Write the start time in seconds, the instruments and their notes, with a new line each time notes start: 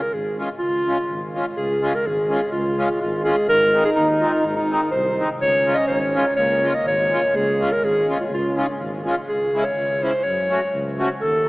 0.01 clarinet A#4
0.13 tuba G#1, clarinet G#4
0.38 accordion G#3 C#4 F4
0.59 tuba C#2, clarinet F4
0.86 accordion G#3 C#4 F4
1.10 tuba G#1
1.33 accordion G#3 C#4 F4
1.57 tuba C#2, euphonium G#3, clarinet G#4
1.81 accordion G#3 C#4 F4
1.95 clarinet A#4
2.06 tuba G#1, clarinet G#4
2.29 accordion G#3 C#4 F4
2.52 tuba C#2, clarinet F4
2.77 accordion G#3 C#4 F4
3.01 tuba G#1, clarinet F4
3.23 accordion G#3 C#4 F4, clarinet G#4
3.49 tuba G#1, euphonium D#4, clarinet A#4
3.72 accordion G#3 C4 D#4
3.85 clarinet G#4
3.96 tuba D#2, clarinet D#4
4.20 accordion G#3 C4 D#4, clarinet F4
4.44 tuba G#1, clarinet D#4
4.56 clarinet D#4
4.69 accordion G#3 C4 D#4
4.91 tuba C2, clarinet C5
5.17 accordion G#3 C4 D#4
5.41 tuba C#2, euphonium C#4, clarinet C#5
5.64 accordion G#3 C#4 F4
5.75 clarinet D#5
5.88 tuba G#1, clarinet C#5
6.14 accordion G#3 C#4 F4
6.36 tuba C#2, euphonium A#3, clarinet C#5
6.61 accordion G#3 C#4 F4
6.74 clarinet D#5
6.86 tuba G#1, clarinet C#5
7.10 accordion G#3 C#4 F4
7.34 tuba C#2, euphonium G#3, clarinet G#4
7.59 accordion G#3 C#4 F4
7.72 clarinet A#4
7.82 tuba G#1, clarinet G#4
8.08 accordion G#3 C#4 F4
8.20 clarinet F4
8.30 tuba C#2, euphonium C#4
8.34 clarinet F4
8.56 accordion G#3 C#4 F4
8.80 tuba G#1
9.05 accordion G#3 C#4 F4
9.29 tuba C#2, clarinet G#4
9.54 accordion G#3 C#4 E4
9.65 clarinet C#5
9.77 tuba C#2
10.01 accordion G#3 C#4 E4, clarinet C5
10.24 tuba F#2, clarinet C#5
10.49 accordion A3 C#4 F#4
10.74 tuba C#2
10.98 accordion A3 C#4 F#4
11.20 tuba D#2, clarinet A4